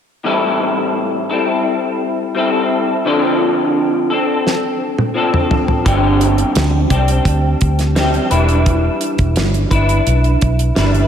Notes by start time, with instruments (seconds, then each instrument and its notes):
0.24 clean electric guitar A2 E3 G3 C4 E4 A4
1.30 clean electric guitar G3 C4 E4 A4
2.35 clean electric guitar G3 C4 E4 A4
3.05 clean electric guitar D3 F3 C4 D4 A4
4.10 clean electric guitar C4 D4 A4
4.47 snare
4.98 high tom
5.14 clean electric guitar F3 C4 D4 A4
5.34 mid tom
5.51 floor tom
5.68 floor tom
5.85 fingered electric bass G1, clean electric guitar G2 D3 G3 C4 D4 G4, kick, closed hi-hat
6.21 closed hi-hat
6.38 closed hi-hat
6.55 fingered electric bass D2, snare, closed hi-hat
6.90 fingered electric bass C2, clean electric guitar G3 C4 D4 G4, kick, closed hi-hat
7.08 closed hi-hat
7.25 fingered electric bass D2, kick, closed hi-hat
7.61 fingered electric bass D2, kick, closed hi-hat
7.79 snare, closed hi-hat
7.95 clean electric guitar G3 C4 D4 G4, snare, closed hi-hat
8.14 closed hi-hat
8.31 fingered electric bass E1, clean electric guitar G3 D4 E4 B4, closed hi-hat
8.36 clean electric guitar E3
8.49 closed hi-hat
8.66 kick, closed hi-hat
9.01 closed hi-hat
9.18 fingered electric bass E1, kick, closed hi-hat
9.36 fingered electric bass G1, snare, closed hi-hat
9.54 closed hi-hat
9.71 fingered electric bass G1, clean electric guitar D4 E4 B4, kick, closed hi-hat
9.89 closed hi-hat
10.07 fingered electric bass B1, closed hi-hat
10.24 closed hi-hat
10.41 fingered electric bass B1, kick, closed hi-hat
10.59 closed hi-hat
10.75 fingered electric bass G1, clean electric guitar G3 D4 E4 B4, snare, closed hi-hat
10.94 closed hi-hat